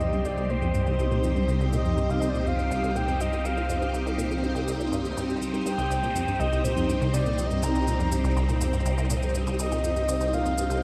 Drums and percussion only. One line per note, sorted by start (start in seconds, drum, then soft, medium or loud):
0.01 cabasa medium
0.13 percussion blips medium
0.13 cabasa soft
0.25 cabasa medium
0.37 cabasa soft
0.50 cabasa soft
0.62 cabasa soft
0.74 cabasa medium
0.87 cabasa soft
0.99 cabasa medium
1.11 cabasa soft
1.24 cabasa loud
1.36 cabasa soft
1.48 cabasa medium
1.61 percussion blips medium
1.61 cabasa soft
1.73 cabasa loud
1.85 cabasa soft
1.98 cabasa medium
2.10 cabasa soft
2.22 cabasa medium
2.35 cabasa soft
2.47 cabasa soft
2.59 cabasa soft
2.71 cabasa medium
2.84 cabasa soft
2.96 percussion blips medium
2.96 cabasa medium
3.08 cabasa soft
3.21 percussion blips medium
3.21 cabasa loud
3.33 cabasa soft
3.45 cabasa medium
3.57 cabasa soft
3.69 cabasa medium
3.82 cabasa soft
3.94 cabasa medium
4.07 percussion blips medium
4.07 cabasa soft
4.19 cabasa medium
4.31 cabasa soft
4.44 cabasa soft
4.56 cabasa soft
4.68 cabasa medium
4.80 cabasa soft
4.93 cabasa medium
5.05 cabasa soft
5.17 cabasa medium
5.30 cabasa soft
5.42 cabasa medium
5.54 percussion blips medium
5.54 cabasa soft
5.66 cabasa medium
5.79 cabasa soft
5.91 cabasa medium
6.03 cabasa soft
6.16 cabasa medium
6.28 cabasa soft
6.40 cabasa soft
6.53 cabasa soft
6.65 cabasa medium
6.77 cabasa soft
6.90 percussion blips soft
6.90 cabasa medium
7.02 cabasa soft
7.14 percussion blips medium
7.14 cabasa medium
7.26 cabasa soft
7.38 cabasa medium
7.51 cabasa soft
7.63 cabasa medium
7.75 cabasa soft
7.87 cabasa medium
8.00 percussion blips medium
8.00 cabasa soft
8.12 cabasa medium
8.24 cabasa soft
8.37 cabasa soft
8.49 cabasa soft
8.61 cabasa medium
8.73 cabasa soft
8.86 cabasa medium
8.98 cabasa soft
9.10 cabasa medium
9.23 cabasa soft
9.35 cabasa medium
9.47 percussion blips medium
9.47 cabasa soft
9.59 cabasa medium
9.72 cabasa soft
9.84 cabasa medium
9.96 cabasa soft
10.09 cabasa medium
10.21 cabasa soft
10.33 cabasa soft
10.46 cabasa soft
10.58 cabasa medium
10.70 cabasa soft